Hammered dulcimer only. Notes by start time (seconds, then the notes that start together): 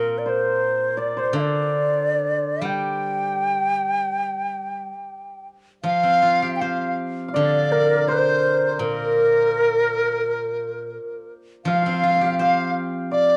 Already playing: A#4
0.26 C5
0.97 D5
1.17 C5
1.34 D5
2.65 G5
5.84 F5
6.61 F5
7.28 F5
7.34 D5
7.72 A#4
8.08 C5
8.79 A#4
11.67 F5
11.74 F5
11.82 F5
11.89 F5
11.93 F5
12.02 F5
12.10 F5
12.16 F5
12.25 F5
12.32 G5
12.41 F5
13.11 D5